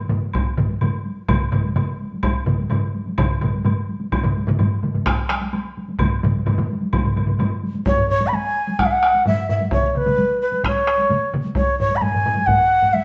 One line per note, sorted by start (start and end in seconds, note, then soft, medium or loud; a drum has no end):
0.09 taiko low-mid medium
0.09 taiko mid medium
0.09 taiko high soft
0.22 taiko high soft
0.33 taiko loud
0.33 taiko high medium
0.33 high woodblock soft
0.57 taiko low-mid medium
0.57 taiko mid loud
0.70 taiko high soft
0.81 taiko low-mid medium
0.81 taiko mid medium
0.81 taiko high medium
0.81 high woodblock soft
1.06 taiko high soft
1.29 taiko loud
1.29 taiko low-mid medium
1.29 taiko mid medium
1.29 taiko high medium
1.29 high woodblock medium
1.52 taiko low-mid loud
1.52 taiko mid loud
1.52 taiko high soft
1.52 high woodblock soft
1.65 taiko high soft
1.76 taiko low-mid medium
1.76 taiko mid medium
1.76 taiko high medium
1.76 high woodblock soft
2.01 taiko high soft
2.13 taiko high soft
2.23 taiko loud
2.23 taiko high medium
2.23 high woodblock medium
2.46 taiko low-mid medium
2.46 taiko mid loud
2.46 taiko high soft
2.58 taiko high soft
2.70 taiko low-mid loud
2.70 taiko mid medium
2.70 taiko high medium
2.70 high woodblock soft
2.95 taiko high soft
3.06 taiko high medium
3.18 taiko loud
3.18 taiko low-mid medium
3.18 taiko mid medium
3.18 taiko high medium
3.18 high woodblock medium
3.41 taiko low-mid medium
3.41 taiko mid loud
3.41 taiko high medium
3.41 high woodblock soft
3.55 taiko high medium
3.65 taiko low-mid medium
3.65 taiko mid medium
3.65 taiko high medium
3.65 high woodblock soft
3.89 taiko high soft
4.01 taiko high medium
4.12 taiko medium
4.12 taiko high medium
4.12 high woodblock medium
4.24 taiko low-mid loud
4.24 taiko mid medium
4.36 taiko high soft
4.47 taiko low-mid medium
4.47 taiko mid loud
4.47 taiko high soft
4.59 taiko low-mid medium
4.59 taiko mid medium
4.59 taiko high medium
4.59 high woodblock soft
4.83 taiko low-mid medium
4.83 taiko mid medium
4.83 taiko high soft
4.94 taiko low-mid medium
4.94 taiko mid medium
4.94 taiko high medium
5.06 taiko rim medium
5.06 taiko loud
5.06 taiko high medium
5.06 high woodblock medium
5.28 taiko rim medium
5.28 taiko high medium
5.28 high woodblock soft
5.42 taiko high medium
5.53 taiko high medium
5.53 high woodblock soft
5.77 taiko high medium
5.88 taiko high medium
5.99 taiko medium
5.99 taiko low-mid loud
5.99 taiko mid medium
5.99 taiko high medium
5.99 high woodblock medium
6.23 taiko low-mid medium
6.23 taiko mid medium
6.23 taiko high soft
6.35 taiko high soft
6.46 taiko low-mid loud
6.46 taiko mid medium
6.46 taiko high medium
6.46 high woodblock soft
6.58 taiko low-mid medium
6.58 taiko mid medium
6.71 taiko high medium
6.81 taiko high medium
6.93 taiko medium
6.93 taiko low-mid medium
6.93 taiko mid medium
6.93 taiko high medium
6.93 high woodblock medium
7.05 taiko low-mid medium
7.05 taiko mid medium
7.16 taiko low-mid medium
7.16 taiko mid medium
7.16 taiko high medium
7.16 high woodblock soft
7.27 taiko low-mid medium
7.27 taiko mid medium
7.27 taiko high medium
7.39 taiko low-mid loud
7.39 taiko mid medium
7.39 taiko high medium
7.39 high woodblock soft
7.63 taiko high medium
7.74 taiko high medium
7.86 8.08 C#5 medium
7.86 taiko loud
7.86 taiko low-mid medium
7.86 taiko high medium
7.98 taiko low-mid medium
8.09 8.29 C#5 medium
8.09 taiko low-mid medium
8.21 taiko low-mid medium
8.21 taiko high medium
8.27 8.36 B5 medium
8.33 8.81 G#5 medium
8.33 taiko high medium
8.67 taiko high medium
8.79 8.87 F#5 medium
8.79 taiko rim medium
8.79 taiko medium
8.79 taiko high medium
8.86 8.93 E5 medium
8.91 9.26 F#5 medium
9.03 taiko rim medium
9.14 taiko high medium
9.26 9.48 E5 medium
9.26 taiko low-mid medium
9.26 taiko high medium
9.49 9.71 E5 medium
9.49 taiko low-mid medium
9.61 taiko high medium
9.71 9.90 C#5 medium
9.71 taiko loud
9.71 taiko mid medium
9.71 taiko high medium
9.82 taiko mid medium
9.90 9.98 C#5 medium
9.95 10.41 B4 medium
9.95 taiko mid medium
10.06 taiko mid medium
10.06 taiko high medium
10.18 taiko high medium
10.42 10.63 B4 medium
10.52 taiko high medium
10.63 11.30 C#5 medium
10.63 taiko rim medium
10.63 taiko medium
10.63 taiko high medium
10.87 taiko rim medium
10.98 taiko high soft
11.09 taiko mid medium
11.09 taiko high medium
11.34 taiko mid loud
11.45 taiko high soft
11.55 11.78 C#5 medium
11.55 taiko loud
11.55 taiko high medium
11.80 11.98 C#5 medium
11.80 taiko low-mid medium
11.91 taiko high soft
11.96 12.03 B5 medium
12.01 12.48 G#5 medium
12.01 taiko low-mid medium
12.01 taiko high medium
12.15 taiko low-mid medium
12.26 taiko low-mid medium
12.36 taiko high medium
12.46 12.95 F#5 medium
12.46 taiko medium
12.46 taiko low-mid medium
12.46 taiko high medium
12.82 taiko low-mid medium
12.82 taiko high soft
12.93 13.04 E5 medium
12.93 taiko high medium